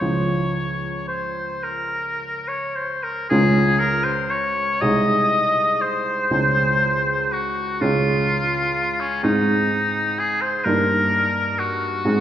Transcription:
0.00 3.26 C#2 soft
0.00 3.26 F3 soft
0.00 3.26 C#4 soft
0.00 3.26 F4 soft
0.00 1.07 C#5 medium
1.08 1.65 C5 medium
1.63 2.49 A#4 medium
2.48 2.77 C#5 medium
2.75 3.05 C5 medium
3.03 3.29 A#4 medium
3.30 4.76 C#2 medium
3.30 4.76 G#3 soft
3.30 4.76 C#4 soft
3.30 4.76 F4 soft
3.30 3.81 G#4 medium
3.79 4.05 A#4 medium
4.04 4.32 C5 medium
4.30 4.83 C#5 medium
4.81 6.28 C2 soft
4.81 6.28 G#3 soft
4.81 6.27 D#4 soft
4.81 6.28 G#4 soft
4.81 5.83 D#5 medium
5.81 7.34 C5 medium
6.31 7.76 C#2 medium
6.31 7.77 G#3 soft
6.31 7.77 C#4 soft
6.31 7.77 G#4 soft
7.33 7.83 F#4 medium
7.81 9.20 C#2 soft
7.81 9.20 G#3 soft
7.81 9.20 C#4 soft
7.81 9.02 F4 medium
7.81 9.20 G#4 soft
9.00 9.23 C#4 medium
9.23 10.61 G#2 soft
9.23 10.61 C4 soft
9.23 10.21 D#4 medium
9.23 10.61 D#4 soft
9.23 10.61 G#4 soft
10.19 10.43 G#4 medium
10.41 10.66 C5 medium
10.64 12.03 G2 soft
10.64 12.03 A#3 soft
10.64 12.03 D#4 soft
10.64 11.61 A#4 medium
10.64 12.03 A#4 soft
11.59 12.20 F#4 medium
12.05 12.20 G#2 soft
12.05 12.20 C4 soft
12.05 12.20 D#4 soft
12.05 12.20 G#4 soft

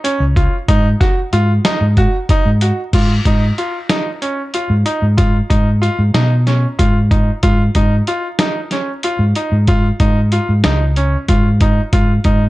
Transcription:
0.04 0.22 C#4 medium
0.04 closed hi-hat medium
0.20 0.45 C#2 medium
0.36 0.54 F4 medium
0.36 kick medium
0.36 closed hi-hat medium
0.68 0.94 G#2 medium
0.68 0.86 D#4 medium
0.68 kick medium
0.68 closed hi-hat medium
1.00 1.18 F#4 medium
1.00 kick medium
1.00 snare soft
1.00 closed hi-hat medium
1.33 1.58 G#2 medium
1.33 1.51 F4 medium
1.33 closed hi-hat soft
1.65 1.83 D#4 medium
1.65 snare loud
1.65 closed hi-hat medium
1.81 2.06 G#2 medium
1.97 2.15 F#4 medium
1.97 kick medium
1.97 closed hi-hat medium
2.29 2.48 D#4 medium
2.29 kick medium
2.29 closed hi-hat medium
2.45 2.70 G#2 medium
2.61 2.80 F#4 medium
2.61 closed hi-hat medium
2.93 3.18 G#2 medium
2.93 3.12 F4 medium
2.93 kick medium
2.93 closed hi-hat medium
2.93 crash medium
3.25 3.51 G#2 medium
3.25 3.44 D#4 medium
3.25 kick medium
3.25 closed hi-hat medium
3.58 3.76 F4 medium
3.58 closed hi-hat soft
3.90 4.08 D#4 medium
3.90 snare medium
3.90 closed hi-hat medium
4.22 4.40 C#4 medium
4.22 closed hi-hat soft
4.54 4.72 F4 medium
4.54 closed hi-hat medium
4.70 4.82 G#2 medium
4.86 5.04 D#4 medium
4.86 closed hi-hat medium
5.02 5.40 G#2 medium
5.18 5.36 F4 medium
5.18 kick medium
5.18 closed hi-hat medium
5.50 5.88 G#2 medium
5.50 5.68 D#4 medium
5.50 kick medium
5.50 closed hi-hat medium
5.82 6.00 F4 medium
5.82 closed hi-hat soft
5.99 6.11 G#2 medium
6.14 6.65 B2 medium
6.14 6.32 D#4 medium
6.14 snare medium
6.14 closed hi-hat medium
6.47 6.65 C#4 medium
6.47 snare soft
6.47 closed hi-hat soft
6.79 7.29 G#2 medium
6.79 6.97 F4 medium
6.79 kick medium
6.79 closed hi-hat medium
7.11 7.29 D#4 medium
7.11 kick medium
7.11 closed hi-hat medium
7.43 7.68 G#2 medium
7.43 7.61 F4 medium
7.43 kick medium
7.43 closed hi-hat medium
7.75 8.00 G#2 medium
7.75 7.93 D#4 medium
7.75 kick medium
7.75 closed hi-hat medium
8.07 8.25 F4 medium
8.07 closed hi-hat medium
8.39 8.58 D#4 medium
8.39 snare medium
8.39 closed hi-hat medium
8.71 8.90 C#4 medium
8.71 snare soft
8.71 closed hi-hat soft
9.03 9.22 F4 medium
9.03 closed hi-hat medium
9.19 9.32 G#2 medium
9.35 9.54 D#4 medium
9.35 closed hi-hat medium
9.52 9.90 G#2 medium
9.67 9.86 F4 medium
9.67 kick medium
9.67 closed hi-hat medium
10.00 10.38 G#2 medium
10.00 10.18 D#4 medium
10.00 kick medium
10.00 closed hi-hat medium
10.32 10.50 F4 medium
10.32 closed hi-hat soft
10.49 10.61 G#2 medium
10.64 11.15 C#2 loud
10.64 10.83 D#4 medium
10.64 snare loud
10.64 closed hi-hat medium
10.96 11.15 C#4 medium
10.96 closed hi-hat soft
11.28 11.79 G#2 medium
11.28 11.47 F4 medium
11.28 kick medium
11.28 closed hi-hat medium
11.60 11.79 D#4 medium
11.60 kick medium
11.60 closed hi-hat medium
11.93 12.18 G#2 medium
11.93 12.11 F4 medium
11.93 kick loud
11.93 closed hi-hat medium
12.24 12.49 G#2 medium
12.24 12.43 D#4 medium
12.24 kick medium
12.24 closed hi-hat medium

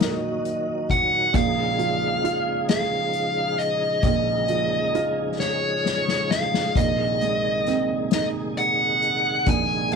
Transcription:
0.00 1.31 A#1 medium
0.00 1.30 A#2 medium
0.00 1.31 A#2 medium
0.00 1.30 D#3 soft
0.00 0.85 F#3 soft
0.00 1.30 F#3 medium
0.00 9.96 D#4 medium
0.00 1.31 F#4 medium
0.00 1.32 F#4 medium
0.00 1.30 A#4 medium
0.00 0.98 D#5 medium
0.00 snare loud
0.00 closed hi-hat medium
0.45 closed hi-hat medium
0.90 1.35 F#5 medium
0.90 kick medium
0.90 closed hi-hat soft
1.33 3.99 A#1 medium
1.33 4.00 A#2 medium
1.33 6.72 C#3 medium
1.33 6.72 F3 medium
1.33 9.96 G#3 medium
1.33 9.96 G#4 medium
1.33 2.68 F5 medium
1.33 kick loud
1.33 closed hi-hat medium
1.79 3.55 F3 medium
1.79 closed hi-hat soft
2.24 4.00 F4 medium
2.24 closed hi-hat medium
2.69 4.45 G#4 medium
2.69 3.62 F5 loud
2.69 snare loud
2.69 closed hi-hat medium
3.13 closed hi-hat medium
3.58 4.03 D#5 medium
3.58 closed hi-hat soft
4.03 6.72 A#1 medium
4.03 6.72 A#2 medium
4.03 5.40 D#5 medium
4.03 kick loud
4.03 closed hi-hat medium
4.48 6.26 F3 medium
4.48 closed hi-hat medium
4.95 6.72 F4 medium
4.95 closed hi-hat medium
5.39 6.71 G#4 medium
5.39 6.33 C#5 medium
5.39 snare medium
5.86 snare medium
6.08 snare medium
6.31 6.77 F5 medium
6.31 snare medium
6.54 snare medium
6.76 9.43 A#1 medium
6.76 9.43 A#2 medium
6.76 9.96 C3 medium
6.76 9.96 D#3 medium
6.76 8.13 D#5 medium
6.76 kick loud
6.76 closed hi-hat medium
7.21 8.99 G#3 soft
7.21 closed hi-hat soft
7.66 9.44 C4 medium
7.66 snare soft
7.66 closed hi-hat soft
8.11 9.89 D#4 medium
8.11 8.26 D#5 medium
8.11 snare loud
8.11 closed hi-hat medium
8.57 9.49 F#5 loud
8.57 closed hi-hat medium
9.02 closed hi-hat soft
9.46 9.96 A#1 medium
9.46 9.96 A#2 medium
9.46 9.93 G#5 medium
9.46 kick loud
9.46 closed hi-hat medium
9.91 closed hi-hat medium

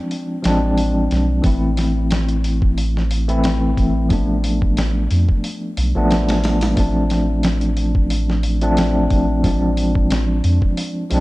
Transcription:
0.00 0.40 F3 medium
0.00 0.41 G#3 medium
0.00 0.41 C4 medium
0.00 0.42 D4 medium
0.11 open hi-hat medium
0.43 1.08 A1 medium
0.43 1.40 F3 medium
0.43 1.40 G#3 medium
0.43 1.41 C4 medium
0.43 1.42 D4 medium
0.43 snare loud
0.43 open hi-hat medium
0.78 open hi-hat medium
1.11 1.41 B1 medium
1.11 snare soft
1.11 open hi-hat medium
1.42 3.75 A1 medium
1.42 3.23 E3 medium
1.42 3.24 A3 medium
1.42 3.25 C4 medium
1.42 kick loud
1.42 open hi-hat medium
1.46 3.26 E4 medium
1.77 snare soft
1.77 open hi-hat medium
2.11 snare loud
2.11 open hi-hat medium
2.29 closed hi-hat soft
2.44 open hi-hat medium
2.62 kick loud
2.78 open hi-hat medium
2.97 snare soft
3.11 open hi-hat medium
3.28 3.40 E3 medium
3.28 3.40 A3 medium
3.28 3.41 C4 medium
3.28 3.41 E4 loud
3.28 closed hi-hat soft
3.44 snare loud
3.44 open hi-hat medium
3.77 5.08 A1 medium
3.77 kick medium
3.77 open hi-hat medium
4.09 5.90 F3 medium
4.09 5.91 A3 medium
4.09 5.92 B3 medium
4.09 kick loud
4.09 open hi-hat medium
4.13 5.92 D4 medium
4.44 open hi-hat medium
4.62 kick medium
4.77 snare loud
4.77 open hi-hat medium
5.11 5.27 F2 medium
5.11 open hi-hat medium
5.29 kick loud
5.44 open hi-hat medium
5.77 5.93 B1 medium
5.77 open hi-hat medium
5.95 6.75 A1 medium
5.95 6.07 F3 loud
5.95 6.08 A3 medium
5.95 6.08 B3 medium
5.95 6.08 D4 loud
6.11 snare medium
6.11 open hi-hat medium
6.29 snare loud
6.29 open hi-hat medium
6.44 snare loud
6.44 open hi-hat medium
6.61 snare loud
6.61 open hi-hat medium
6.76 9.08 A1 medium
6.76 8.57 F3 medium
6.76 8.58 A3 medium
6.76 8.58 C4 medium
6.76 kick loud
6.76 open hi-hat medium
6.80 8.59 D4 medium
7.10 snare soft
7.10 open hi-hat medium
7.43 snare loud
7.43 open hi-hat medium
7.61 closed hi-hat soft
7.77 open hi-hat medium
7.95 kick medium
8.10 open hi-hat medium
8.30 snare soft
8.43 open hi-hat medium
8.61 8.74 F3 medium
8.61 8.74 A3 medium
8.61 8.74 C4 medium
8.61 8.74 D4 loud
8.61 closed hi-hat soft
8.77 snare loud
8.77 open hi-hat medium
9.10 10.41 A1 medium
9.10 kick medium
9.10 open hi-hat medium
9.43 11.07 F3 medium
9.43 11.08 G#3 medium
9.43 11.08 C4 medium
9.43 11.09 D4 medium
9.43 kick medium
9.43 open hi-hat medium
9.77 open hi-hat medium
9.95 kick medium
10.10 snare loud
10.10 open hi-hat medium
10.44 10.60 F2 medium
10.44 open hi-hat medium
10.62 kick loud
10.77 open hi-hat medium
11.10 11.20 B1 medium
11.10 11.20 F3 medium
11.10 11.20 G#3 medium
11.10 11.20 C4 medium
11.10 open hi-hat medium
11.14 11.20 D4 medium

